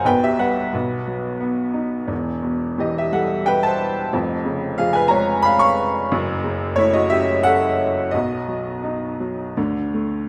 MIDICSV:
0, 0, Header, 1, 2, 480
1, 0, Start_track
1, 0, Key_signature, 1, "minor"
1, 0, Tempo, 682594
1, 41, Time_signature, 3, 2, 24, 8
1, 2441, Tempo, 657174
1, 3881, Tempo, 675676
1, 5801, Tempo, 691244
1, 6281, Tempo, 738007
1, 7225, End_track
2, 0, Start_track
2, 0, Title_t, "Upright piano"
2, 0, Program_c, 0, 0
2, 0, Control_c, 0, 64, 127
2, 33, Note_on_c, 0, 35, 60
2, 36, Note_on_c, 0, 47, 63
2, 43, Note_on_c, 0, 79, 91
2, 47, Note_on_c, 0, 71, 70
2, 49, Control_c, 0, 64, 0
2, 153, Note_off_c, 0, 79, 0
2, 156, Note_off_c, 0, 71, 0
2, 165, Note_on_c, 0, 67, 56
2, 167, Note_on_c, 0, 76, 79
2, 190, Control_c, 0, 64, 127
2, 272, Note_on_c, 0, 55, 44
2, 274, Note_off_c, 0, 67, 0
2, 276, Note_on_c, 0, 78, 76
2, 278, Note_on_c, 0, 71, 62
2, 287, Note_off_c, 0, 76, 0
2, 488, Note_off_c, 0, 35, 0
2, 503, Note_off_c, 0, 47, 0
2, 509, Note_off_c, 0, 55, 0
2, 514, Note_on_c, 0, 47, 59
2, 520, Note_on_c, 0, 35, 57
2, 529, Control_c, 0, 64, 0
2, 668, Control_c, 0, 64, 127
2, 755, Note_on_c, 0, 54, 45
2, 970, Note_off_c, 0, 78, 0
2, 971, Note_off_c, 0, 71, 0
2, 987, Note_on_c, 0, 59, 50
2, 1221, Note_on_c, 0, 63, 45
2, 1451, Note_off_c, 0, 47, 0
2, 1455, Note_off_c, 0, 35, 0
2, 1458, Note_off_c, 0, 54, 0
2, 1458, Note_on_c, 0, 28, 50
2, 1461, Note_off_c, 0, 59, 0
2, 1461, Note_on_c, 0, 40, 55
2, 1465, Note_off_c, 0, 63, 0
2, 1492, Control_c, 0, 64, 0
2, 1596, Control_c, 0, 64, 127
2, 1708, Note_on_c, 0, 47, 45
2, 1955, Note_on_c, 0, 52, 47
2, 1964, Note_on_c, 0, 67, 57
2, 1971, Note_on_c, 0, 75, 70
2, 2076, Note_off_c, 0, 67, 0
2, 2092, Note_off_c, 0, 75, 0
2, 2097, Note_on_c, 0, 76, 68
2, 2099, Note_on_c, 0, 67, 54
2, 2195, Note_on_c, 0, 55, 53
2, 2200, Note_on_c, 0, 78, 75
2, 2203, Note_off_c, 0, 76, 0
2, 2204, Note_off_c, 0, 67, 0
2, 2205, Note_on_c, 0, 69, 59
2, 2425, Note_off_c, 0, 69, 0
2, 2433, Note_on_c, 0, 79, 91
2, 2445, Note_on_c, 0, 71, 72
2, 2447, Note_off_c, 0, 78, 0
2, 2557, Note_off_c, 0, 71, 0
2, 2557, Note_on_c, 0, 81, 88
2, 2563, Note_off_c, 0, 79, 0
2, 2577, Note_on_c, 0, 72, 65
2, 2648, Note_off_c, 0, 47, 0
2, 2784, Note_off_c, 0, 81, 0
2, 2795, Note_off_c, 0, 72, 0
2, 2882, Note_off_c, 0, 28, 0
2, 2883, Note_off_c, 0, 40, 0
2, 2889, Note_off_c, 0, 52, 0
2, 2896, Note_off_c, 0, 55, 0
2, 2922, Note_on_c, 0, 29, 60
2, 2924, Note_on_c, 0, 41, 70
2, 2934, Control_c, 0, 64, 0
2, 3070, Control_c, 0, 64, 127
2, 3158, Note_on_c, 0, 49, 52
2, 3396, Note_on_c, 0, 77, 86
2, 3406, Note_on_c, 0, 53, 55
2, 3408, Note_on_c, 0, 68, 68
2, 3507, Note_on_c, 0, 80, 88
2, 3508, Note_off_c, 0, 77, 0
2, 3515, Note_off_c, 0, 68, 0
2, 3524, Note_on_c, 0, 71, 67
2, 3617, Note_on_c, 0, 82, 86
2, 3624, Note_off_c, 0, 80, 0
2, 3633, Note_off_c, 0, 71, 0
2, 3635, Note_on_c, 0, 73, 76
2, 3639, Note_on_c, 0, 56, 61
2, 3864, Note_off_c, 0, 73, 0
2, 3868, Note_on_c, 0, 83, 107
2, 3879, Note_off_c, 0, 82, 0
2, 3888, Note_on_c, 0, 77, 80
2, 3988, Note_on_c, 0, 85, 99
2, 3989, Note_off_c, 0, 77, 0
2, 3999, Note_off_c, 0, 83, 0
2, 3999, Note_on_c, 0, 77, 82
2, 4091, Note_off_c, 0, 49, 0
2, 4216, Note_off_c, 0, 85, 0
2, 4222, Note_off_c, 0, 77, 0
2, 4329, Note_off_c, 0, 29, 0
2, 4330, Note_off_c, 0, 41, 0
2, 4334, Note_off_c, 0, 53, 0
2, 4337, Note_off_c, 0, 56, 0
2, 4359, Note_on_c, 0, 42, 73
2, 4360, Note_on_c, 0, 30, 71
2, 4368, Control_c, 0, 64, 0
2, 4511, Control_c, 0, 64, 127
2, 4589, Note_on_c, 0, 49, 51
2, 4815, Note_on_c, 0, 73, 101
2, 4822, Note_on_c, 0, 57, 57
2, 4833, Note_on_c, 0, 64, 72
2, 4941, Note_on_c, 0, 75, 86
2, 4947, Note_off_c, 0, 64, 0
2, 4950, Note_off_c, 0, 73, 0
2, 4954, Note_on_c, 0, 66, 67
2, 5057, Note_on_c, 0, 76, 90
2, 5060, Note_off_c, 0, 75, 0
2, 5066, Note_on_c, 0, 61, 55
2, 5068, Note_off_c, 0, 66, 0
2, 5070, Note_on_c, 0, 67, 71
2, 5291, Note_off_c, 0, 76, 0
2, 5296, Note_on_c, 0, 78, 109
2, 5298, Note_off_c, 0, 67, 0
2, 5317, Note_on_c, 0, 69, 84
2, 5528, Note_off_c, 0, 49, 0
2, 5768, Note_off_c, 0, 57, 0
2, 5774, Note_off_c, 0, 69, 0
2, 5775, Note_off_c, 0, 42, 0
2, 5776, Note_off_c, 0, 30, 0
2, 5776, Note_off_c, 0, 61, 0
2, 5777, Note_on_c, 0, 75, 81
2, 5792, Note_on_c, 0, 66, 66
2, 5797, Note_on_c, 0, 35, 56
2, 5799, Note_on_c, 0, 47, 67
2, 5806, Note_off_c, 0, 78, 0
2, 5813, Control_c, 0, 64, 0
2, 5952, Control_c, 0, 64, 127
2, 6036, Note_on_c, 0, 54, 46
2, 6281, Note_on_c, 0, 63, 48
2, 6508, Note_off_c, 0, 54, 0
2, 6518, Note_on_c, 0, 54, 50
2, 6722, Note_off_c, 0, 75, 0
2, 6729, Note_off_c, 0, 66, 0
2, 6732, Note_off_c, 0, 35, 0
2, 6732, Note_off_c, 0, 47, 0
2, 6745, Note_off_c, 0, 63, 0
2, 6754, Note_off_c, 0, 54, 0
2, 6759, Note_on_c, 0, 38, 52
2, 6759, Note_on_c, 0, 50, 59
2, 6769, Control_c, 0, 64, 0
2, 6869, Control_c, 0, 64, 127
2, 6998, Note_on_c, 0, 57, 39
2, 7216, Note_off_c, 0, 38, 0
2, 7225, Note_off_c, 0, 50, 0
2, 7225, Note_off_c, 0, 57, 0
2, 7225, End_track
0, 0, End_of_file